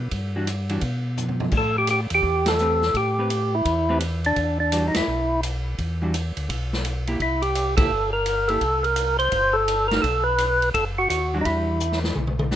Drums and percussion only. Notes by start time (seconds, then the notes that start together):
0.11 kick, ride
0.47 hi-hat pedal, ride
0.69 ride
0.81 kick, ride
1.17 floor tom, hi-hat pedal
1.29 floor tom
1.40 floor tom
1.51 kick, crash
1.87 hi-hat pedal, ride
2.10 ride
2.23 kick
2.46 snare, ride
2.58 hi-hat pedal
2.82 snare
2.94 kick, ride
3.30 hi-hat pedal, ride
3.65 kick, ride
4.00 hi-hat pedal, ride
4.24 ride
4.36 kick, ride
4.72 hi-hat pedal, ride
4.94 snare, ride
5.43 hi-hat pedal, ride
5.78 kick, ride
6.14 hi-hat pedal, ride
6.37 ride
6.49 kick, ride
6.73 snare
6.85 hi-hat pedal, ride
7.07 ride
7.20 kick, ride
7.42 ride
7.55 hi-hat pedal, ride
7.77 kick, ride
8.26 hi-hat pedal, ride
8.48 ride
8.61 kick, ride
8.84 ride
8.96 hi-hat pedal, ride
9.19 ride
9.32 kick, ride
9.68 hi-hat pedal, ride
9.91 snare, ride
10.04 kick, ride
10.38 hi-hat pedal, ride
10.62 ride
10.74 kick, ride
11.10 hi-hat pedal, ride
11.45 kick, ride
11.80 hi-hat pedal
11.92 snare
12.04 snare
12.15 mid tom
12.27 mid tom
12.39 mid tom
12.51 snare, hi-hat pedal